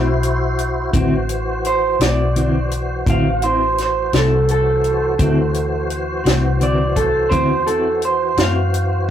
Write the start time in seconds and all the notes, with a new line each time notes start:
Already playing: B1 E4 F#4 C5
0.23 closed hi-hat
0.58 closed hi-hat
0.92 A1 D3 E3 C4 E4 F#4 C5, kick, closed hi-hat
1.29 closed hi-hat
1.65 C5, closed hi-hat
1.99 B1 C4 E4 F#4 D5, snare, closed hi-hat
2.35 D3 C4 E4 F#4, closed hi-hat
2.71 closed hi-hat
3.07 A1 D3 C4 E4 F#4 F5, kick, closed hi-hat
3.42 C4 E4 F#4 C5, closed hi-hat
3.78 snare, closed hi-hat
3.82 C5
4.13 C2 C4 E4 F#4 A4, snare, closed hi-hat
4.48 A4, closed hi-hat
4.84 closed hi-hat
5.18 D2 D3 E3 C4 E4 F#4 C5, kick, closed hi-hat
5.54 closed hi-hat
5.90 closed hi-hat
6.24 C2 C4 E4 F#4, snare, closed hi-hat
6.59 D3 C4 E4 F#4 D5, closed hi-hat
6.96 A4, kick, closed hi-hat
7.29 E2 D3 C4 E4 F#4 C5, kick, closed hi-hat
7.66 C4 E4 F#4 A4, closed hi-hat
8.02 C5, closed hi-hat
8.37 F#2 C4 E4 F#4 F5, snare, closed hi-hat
8.74 closed hi-hat